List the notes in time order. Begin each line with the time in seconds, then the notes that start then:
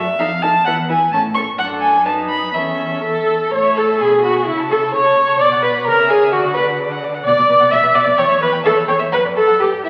Already playing: F#2 E5
0.19 F2 D#4 A4 F5
0.42 D#4 A4 A5
0.65 E2 E4 B4 F#5
0.89 E4 B4 G#5
1.12 A2 C#4 A4 A5
1.35 C#4 A4 C#6
1.58 F#2 D4 A4 F#5
1.81 G#5
2.05 D#4 B4 A5
2.29 B5
2.54 E2 C#4 A4 E5
3.03 A4
3.52 A2 C#5
3.64 E5
3.75 A4 C#5
3.88 E5
3.99 B2 G#4 B5
4.13 G#5
4.21 F#4 B5
4.36 G#5
4.45 C#3 E4 C#6
4.59 A5
4.68 A4 C#6
4.84 A5
4.92 C#5 C#6
5.05 A5
5.16 C#6
5.28 A5
5.38 B2 D5
5.51 F#5
5.62 B4 D5
5.75 F#5
5.85 C#3 A#4 C#5
5.99 E5
6.08 G#4 C#5
6.24 E5
6.32 D3 F#4 D5
6.46 F#5
6.54 B4
6.58 D5
6.70 F#5
6.82 D5
6.91 F#5
7.04 D5
7.14 F#5
7.25 B2 D5 F#5
7.38 B2 D5
7.49 B2 B4
7.60 B2 F#5
7.70 B2 D5 E5
7.82 B2 B4
7.94 B2 D5 F#5
8.04 B2 D5
8.17 E2 C#5 G5
8.29 E2 E5
8.40 E2 B4
8.52 E2 G5
8.64 E2 A4 E5
8.76 E2 C#5
8.87 E2 C#5 G5
8.99 E2 E5
9.12 F#2 B4 F#5
9.25 F#2 D5
9.35 F#2 A4
9.47 F#2 F#5
9.60 G2 G4 B4
9.72 G2 G4
9.84 G2 E4 E5